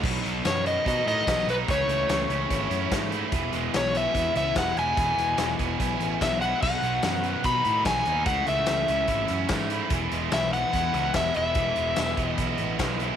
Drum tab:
CC |x-------|--------|--------|--------|
HH |-xxxxxxx|xxxxxxxx|xxxxxxxx|xxxxxxxx|
TB |--x---x-|--x---x-|--x---x-|--x---x-|
SD |--o---o-|--o---o-|--o---o-|--o---o-|
BD |o---o-o-|o---o-o-|o---o-o-|o--oo-o-|

CC |x-------|--------|--------|--------|
HH |-xxxxxxx|xxxxxxxx|xxxxxxxx|xxxxxxxx|
TB |--x---x-|--x---x-|--x---x-|--x---x-|
SD |--o---o-|--o---o-|--o---o-|--o---o-|
BD |o---o-o-|o---o-o-|o---o-o-|o--oo-o-|